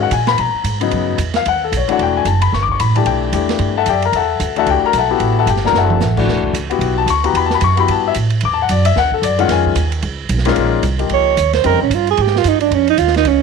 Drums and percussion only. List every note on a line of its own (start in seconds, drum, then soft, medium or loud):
0.11 hi-hat pedal medium
0.11 ride medium
0.27 snare medium
0.27 ride soft
0.38 ride medium
0.64 hi-hat pedal medium
0.64 ride medium
0.81 ride medium
0.91 ride medium
1.18 hi-hat pedal medium
1.18 ride medium
1.34 snare medium
1.34 ride soft
1.46 ride medium
1.73 hi-hat pedal medium
1.73 ride medium
1.89 ride soft
1.99 ride soft
2.25 hi-hat pedal medium
2.25 ride medium
2.42 ride medium
2.53 snare soft
2.69 kick medium
2.80 hi-hat pedal soft
2.80 ride medium
2.96 ride soft
3.06 ride medium
3.33 hi-hat pedal medium
3.33 ride medium
3.49 snare medium
3.49 ride soft
3.59 ride medium
3.86 hi-hat pedal medium
3.86 ride medium
4.02 ride soft
4.13 ride medium
4.40 hi-hat pedal medium
4.40 ride medium
4.56 ride soft
4.67 ride medium
4.93 hi-hat pedal medium
4.93 ride medium
5.20 ride medium
5.47 hi-hat pedal medium
5.47 ride medium
5.56 snare soft
5.66 snare soft
5.74 snare soft
5.90 mid tom medium
6.01 snare medium
6.01 hi-hat pedal medium
6.17 kick medium
6.17 crash medium
6.28 snare soft
6.44 kick medium
6.54 hi-hat pedal medium
6.54 ride medium
6.71 ride soft
6.81 ride medium
7.08 hi-hat pedal medium
7.08 ride medium
7.24 ride soft
7.35 ride medium
7.50 snare soft
7.61 hi-hat pedal medium
7.61 ride medium
7.77 ride soft
7.88 ride medium
8.14 hi-hat pedal medium
8.14 ride medium
8.30 ride soft
8.41 ride medium
8.69 hi-hat pedal soft
8.69 ride medium
8.85 ride medium
8.96 snare soft
9.12 kick medium
9.23 hi-hat pedal medium
9.23 ride medium
9.39 ride soft
9.49 snare soft
9.49 ride medium
9.65 kick medium
9.75 hi-hat pedal medium
9.75 ride medium
9.92 ride medium
10.02 ride medium
10.29 hi-hat pedal medium
10.29 ride medium
10.38 snare soft
10.45 snare soft
10.45 ride medium
10.56 ride medium
10.83 hi-hat pedal medium
10.83 ride medium
10.99 ride soft
11.09 ride medium
11.37 hi-hat pedal medium
11.37 ride medium
11.53 snare soft
11.53 ride soft
11.64 ride medium
11.91 hi-hat pedal medium
11.91 ride medium
12.07 ride soft
12.17 ride medium
12.27 snare soft
12.36 snare soft
12.44 hi-hat pedal medium
12.44 ride medium
12.60 ride soft
12.71 ride medium
12.87 ride soft
12.98 hi-hat pedal medium
12.98 ride medium
13.07 snare soft
13.14 snare soft
13.14 ride soft
13.25 ride medium